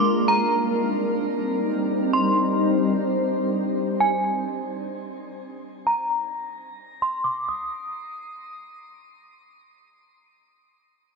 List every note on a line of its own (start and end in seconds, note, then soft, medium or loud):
0.00 3.73 D4 medium
0.00 1.86 A#4 medium
0.04 3.73 G3 medium
0.04 3.73 C4 medium
0.04 3.73 D#4 medium
0.28 0.50 A#5 medium
1.90 3.75 C5 medium
2.13 2.36 C6 medium
4.00 4.22 G#5 medium
5.87 6.08 A#5 medium
7.02 7.24 C6 medium
7.24 7.47 D6 medium
7.49 8.84 D#6 medium